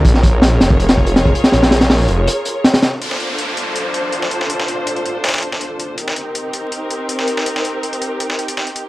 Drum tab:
HH |x---x---x---x---x-x---x-x---x-x-|x-x-x-x-o---x---x---x---x-x-x---|x---x---x---x---x---x---x---x---|x---x---x-x-x---xxxxx---x---x---|
SD |--o-----o---o-----o-----o-----o-|o-o-o-o-o-o-------------o-o-o---|--o-----------------------o---o-|--o-------------oooo--o---------|
BD |o---o---------o-----o-----o-----|--------------------------------|--------------------------------|--------------------------------|

HH |x---x---x---x---x---x---x---x---|x---x---x-x-x---x---x-x---x-x---|
SD |--o-----------------------o---o-|--o---------------o-----o-------|
BD |--------------------------------|--------------------------------|